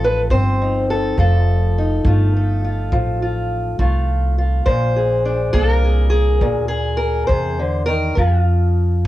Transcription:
0.00 0.28 A1 medium
0.00 1.18 F3 medium
0.00 0.30 C4 medium
0.00 0.60 D#4 soft
0.00 0.31 A4 medium
0.04 0.20 B4 medium
0.30 1.15 G1 medium
0.30 1.15 C4 medium
0.30 0.89 C5 medium
0.30 kick medium
0.62 1.15 D#4 soft
0.90 1.19 A4 medium
1.18 2.03 F1 medium
1.18 2.92 F3 medium
1.18 2.35 A4 medium
1.18 kick medium
1.78 4.65 D#4 soft
2.05 2.90 G1 medium
2.05 3.78 A3 medium
2.05 2.64 F4 soft
2.05 kick medium
2.36 4.65 A4 soft
2.64 3.22 F4 soft
2.92 3.77 A1 medium
2.92 6.43 F3 medium
2.92 kick medium
3.22 3.80 F4 soft
3.79 4.64 C2 medium
3.79 4.63 A3 medium
3.79 4.38 F4 soft
3.79 kick medium
4.38 4.96 F4 soft
4.66 5.52 A#1 medium
4.66 6.41 A#2 medium
4.66 5.52 C5 medium
4.66 kick medium
4.96 5.83 G#4 soft
5.25 8.14 D4 soft
5.53 6.39 C2 medium
5.53 8.14 A#3 medium
5.53 5.73 A4 loud
5.53 kick medium
5.73 6.71 A#4 loud
5.84 6.09 G#4 soft
6.10 6.67 G#4 medium
6.41 7.27 D2 medium
6.41 7.30 A#2 medium
6.41 kick medium
6.68 7.58 G#4 medium
6.97 7.27 A#4 medium
7.27 8.15 E2 medium
7.27 7.60 C3 medium
7.27 7.85 C5 medium
7.27 kick medium
7.59 7.87 D3 medium
7.86 8.17 D#3 medium
7.86 8.17 A#4 medium
8.15 9.03 F2 medium
8.15 9.07 F3 medium
8.15 9.07 F4 medium
8.15 kick medium

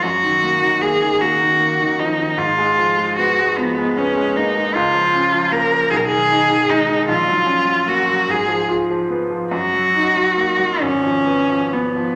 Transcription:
0.02 2.35 F#2 medium
0.02 0.83 F#4 medium
0.23 0.54 D#3 soft
0.43 0.74 A#3 soft
0.62 0.94 D#3 soft
0.81 1.14 A#3 soft
0.81 1.23 G#4 medium
1.02 1.33 D#3 soft
1.21 1.52 A#3 soft
1.21 2.01 F#4 medium
1.41 1.72 D#3 soft
1.60 1.91 A#3 soft
1.80 2.10 D#3 soft
1.99 2.18 F3 soft
1.99 2.39 D#4 medium
2.18 2.38 D#3 soft
2.37 4.69 G#2 medium
2.37 3.16 F4 medium
2.58 2.90 G#3 soft
2.78 3.09 F3 soft
2.97 3.29 G#3 soft
3.17 3.49 B3 soft
3.17 3.59 F#4 medium
3.38 3.69 G#3 soft
3.58 3.89 F3 soft
3.58 3.99 B3 medium
3.78 4.09 G#3 soft
3.97 4.28 B3 soft
3.97 4.38 C#4 medium
4.17 4.47 G#3 soft
4.36 4.55 A#3 soft
4.36 4.76 D#4 medium
4.55 4.74 G#3 soft
4.74 5.88 C#2 medium
4.74 5.53 F4 medium
4.94 5.24 F3 soft
5.13 5.43 C#4 soft
5.32 5.63 F3 soft
5.51 5.83 A#3 soft
5.51 5.92 A#4 medium
5.72 5.91 F3 soft
5.90 7.05 B1 medium
5.90 5.98 G#4 medium
5.97 6.06 A#4 medium
6.05 6.71 G#4 loud
6.11 6.42 D#3 soft
6.32 6.62 D#4 soft
6.50 6.81 D#3 soft
6.69 7.00 G#3 soft
6.69 7.08 D#4 medium
6.88 7.08 D#3 soft
7.08 8.25 A#1 medium
7.08 7.90 F4 medium
7.28 7.59 F#3 soft
7.46 7.79 C#4 soft
7.67 7.99 F#3 soft
7.87 8.20 A#3 soft
7.87 8.32 F#4 medium
8.08 8.28 F#3 soft
8.28 9.48 G#2 medium
8.28 8.70 G#4 medium
8.48 8.81 F3 soft
8.69 9.02 F4 soft
8.90 9.23 F3 soft
9.10 9.43 B3 soft
9.30 9.52 F3 soft
9.51 10.77 F#2 medium
9.51 10.83 F#4 medium
9.74 10.08 F#3 soft
9.95 10.29 D#4 soft
10.16 10.51 F#3 soft
10.37 10.72 A#3 soft
10.59 10.81 F#3 soft
10.81 12.15 G#1 soft
10.81 11.75 C#4 medium
11.03 11.40 F3 soft
11.26 11.63 B3 soft
11.49 11.87 F3 soft
11.72 12.11 B3 soft
11.72 12.15 B3 medium
11.96 12.15 F3 soft

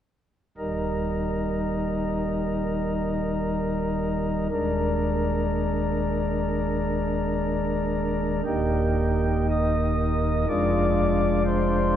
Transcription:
0.58 4.48 D#1 soft
0.58 4.48 D#2 medium
0.58 4.48 G3 soft
0.58 4.48 D#4 soft
0.58 4.48 A#4 soft
4.51 8.41 D#1 medium
4.51 8.41 D#2 medium
4.51 8.41 G#3 medium
4.51 8.41 D4 medium
4.51 8.41 A#4 medium
8.45 10.45 D#1 soft
8.45 10.45 D#2 soft
8.45 10.45 A#3 soft
8.45 10.45 D#4 soft
8.45 9.47 G4 medium
9.50 10.46 D#5 medium
10.48 11.96 F1 medium
10.48 11.96 F2 soft
10.48 11.96 G#3 soft
10.48 11.96 D4 soft
10.48 11.96 F4 soft
10.48 11.43 D5 loud
11.46 11.96 C5 medium

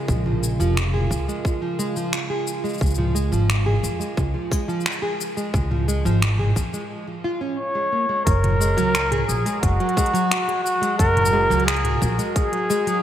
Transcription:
0.00 6.90 C#3 medium
0.00 0.24 G#3 medium
0.00 6.90 G#3 medium
0.00 6.90 F4 medium
0.00 6.90 A#4 medium
0.08 0.55 A#1 medium
0.08 kick loud
0.08 cabasa soft
0.26 0.41 F3 medium
0.26 mid tom medium
0.43 0.58 G#3 medium
0.43 cabasa medium
0.59 1.06 F1 medium
0.59 0.76 F3 medium
0.59 cabasa soft
0.77 finger snap medium
0.77 cabasa soft
0.94 1.26 G#4 medium
0.94 mid tom medium
1.11 1.25 C#2 medium
1.11 kick medium
1.11 cabasa medium
1.28 1.60 G#3 medium
1.28 cabasa soft
1.45 kick loud
1.45 cabasa soft
1.62 1.77 F3 medium
1.79 1.94 G#3 loud
1.79 cabasa medium
1.96 2.12 F3 loud
1.96 cabasa soft
2.13 finger snap medium
2.13 cabasa soft
2.30 2.62 G#4 medium
2.47 cabasa medium
2.64 2.81 G#3 medium
2.64 cabasa soft
2.69 cabasa soft
2.74 cabasa soft
2.78 3.28 C#2 medium
2.78 kick loud
2.78 cabasa soft
2.82 cabasa soft
2.86 cabasa soft
2.90 cabasa soft
2.95 3.13 F3 medium
2.95 mid tom medium
2.95 cabasa soft
3.15 3.30 G#3 medium
3.15 cabasa medium
3.32 3.79 G#1 medium
3.32 3.48 F3 loud
3.32 cabasa soft
3.50 finger snap medium
3.50 cabasa soft
3.66 3.99 G#4 medium
3.66 mid tom medium
3.83 3.98 F2 medium
3.83 cabasa medium
4.00 4.32 G#3 medium
4.00 cabasa soft
4.17 4.32 C#2 medium
4.17 kick loud
4.17 cabasa soft
4.34 4.50 F3 medium
4.51 4.67 G#3 loud
4.51 kick loud
4.51 cabasa medium
4.68 4.85 F3 loud
4.68 cabasa soft
4.81 cabasa soft
4.86 finger snap loud
4.86 cabasa soft
4.92 cabasa soft
5.02 5.35 G#4 medium
5.21 cabasa medium
5.37 5.69 G#3 medium
5.37 cabasa soft
5.54 6.01 C#2 loud
5.54 kick loud
5.54 cabasa soft
5.71 5.86 F3 medium
5.71 mid tom medium
5.88 6.03 G#3 medium
5.88 cabasa medium
6.05 6.52 G#1 medium
6.05 6.21 F3 loud
6.05 cabasa soft
6.22 finger snap medium
6.22 cabasa soft
6.39 6.72 G#4 medium
6.39 mid tom medium
6.56 6.70 F2 medium
6.56 kick medium
6.56 cabasa medium
6.74 7.06 G#3 medium
6.74 cabasa soft
7.08 7.23 F3 medium
7.24 7.40 F4 medium
7.41 7.57 C#4 medium
7.57 8.22 C#5 medium
7.75 7.91 G#3 medium
7.92 8.08 A#3 medium
8.09 8.25 G#3 medium
8.26 8.73 F#1 medium
8.26 9.24 A#4 loud
8.26 kick loud
8.26 closed hi-hat medium
8.26 cabasa soft
8.43 8.59 F#3 medium
8.43 closed hi-hat soft
8.43 mid tom medium
8.60 8.76 G#3 loud
8.60 cabasa medium
8.77 9.25 C#2 medium
8.77 8.94 F#3 loud
8.77 closed hi-hat soft
8.77 cabasa soft
8.95 finger snap loud
8.95 closed hi-hat medium
8.95 cabasa soft
9.06 13.03 F#4 medium
9.12 9.44 G#4 medium
9.12 closed hi-hat soft
9.12 mid tom medium
9.27 9.43 A#1 medium
9.27 9.60 G#4 medium
9.27 cabasa medium
9.46 9.78 G#3 medium
9.46 closed hi-hat soft
9.46 cabasa soft
9.62 9.77 F#1 medium
9.62 10.61 F#4 medium
9.62 kick loud
9.62 closed hi-hat medium
9.62 cabasa soft
9.80 9.95 F#3 medium
9.80 closed hi-hat soft
9.89 closed hi-hat soft
9.97 10.12 G#3 loud
9.97 kick loud
9.97 closed hi-hat soft
9.97 cabasa medium
10.06 closed hi-hat soft
10.14 10.30 F#3 loud
10.14 closed hi-hat soft
10.14 cabasa soft
10.31 finger snap loud
10.31 closed hi-hat medium
10.31 cabasa soft
10.48 10.80 G#4 medium
10.48 closed hi-hat soft
10.64 10.96 F#4 medium
10.64 cabasa medium
10.81 11.14 G#3 medium
10.81 closed hi-hat soft
10.81 cabasa soft
10.98 11.46 F#1 loud
10.98 11.63 A#4 loud
10.98 kick loud
10.98 closed hi-hat medium
10.98 cabasa soft
11.16 11.31 F#3 medium
11.16 closed hi-hat soft
11.16 mid tom medium
11.25 cabasa medium
11.33 11.48 G#3 loud
11.50 11.97 C#2 loud
11.50 11.66 F#3 loud
11.50 closed hi-hat soft
11.50 cabasa soft
11.60 closed hi-hat soft
11.66 12.05 G#4 medium
11.66 finger snap loud
11.66 closed hi-hat medium
11.66 cabasa soft
11.76 closed hi-hat soft
11.84 12.17 G#4 medium
11.84 closed hi-hat soft
11.84 mid tom medium
12.02 12.16 A#1 medium
12.02 kick medium
12.02 cabasa medium
12.18 12.51 G#3 medium
12.18 closed hi-hat soft
12.18 cabasa soft
12.34 12.99 G#4 loud
12.34 kick loud
12.34 closed hi-hat medium
12.34 cabasa soft
12.52 12.68 F#3 medium
12.52 closed hi-hat soft
12.70 12.85 G#3 loud
12.70 cabasa medium
12.87 13.03 F#3 loud
12.87 closed hi-hat soft
12.87 cabasa soft

